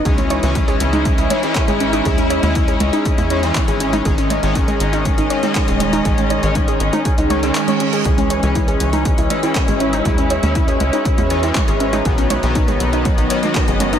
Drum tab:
HH |xxxxxxxxxxxxxxxx|xxxxxxxxxxxxxxxx|xxxxxxxxxxxxxxxx|xxxxxxxxxxxxxxxx|
CP |------------x---|------------x---|------------x---|------------x---|
CG |-O--O--O--O--O--|O--O--O--O--O--O|--O--O--O--O--O-|-O--O--O--O--O--|
BD |o---o---o---o---|o---o---o---o---|o---o---o---o---|o---o---o-------|

HH |xxxxxxxxxxxxxxxx|xxxxxxxxxxxxxxxx|xxxxxxxxxxxxxxxx|
CP |------------x---|------------x---|------------x---|
CG |-O--O--O--O--O--|O--O--O--O--O--O|--O--O--O--O--O-|
BD |o---o---o---o---|o---o---o---o---|o---o---o---o---|